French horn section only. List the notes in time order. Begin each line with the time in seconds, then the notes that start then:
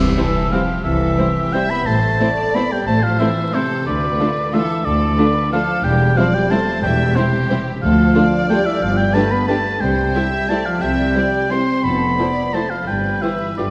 Already playing: E3
0.52 F3
0.85 E3
1.54 G3
1.71 B3
1.87 A3
2.55 B3
2.72 G3
2.87 A3
3.02 F3
3.21 E3
3.54 C3
3.88 D3
4.54 E3
4.86 D3
5.52 F3
5.85 G3
6.17 F3
6.35 G3
6.52 A3
6.83 G3
7.16 C3
7.82 F3
8.50 G3
8.67 E3
8.82 F3
8.99 G3
9.15 A3
9.33 B3
9.49 A3
9.82 G3
10.49 A3
10.66 F3
10.83 G3
11.50 C4
11.85 B3
12.54 A3
12.70 F3
12.88 G3
13.22 E3
13.58 D3